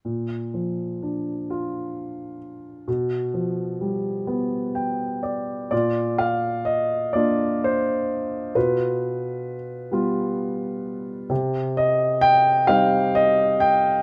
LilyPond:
<<
  \new Staff \with { instrumentName = "Grand piano" } { \time 6/8 \key bes \major \tempo 4. = 43 r2. | r2 g''8 d''8 | d''8 f''8 ees''8 d''8 c''4 | b'4 r2 |
r8 ees''8 g''8 f''8 ees''8 g''8 | }
  \new Staff \with { instrumentName = "Grand piano" } { \time 6/8 \key bes \major bes,8 f8 d'8 f'4. | b,8 f8 g8 b4. | <bes, f'>4. <bes d' f'>4. | <b, f'>4. <g b f'>4. |
c4. <g c' ees'>4. | }
>>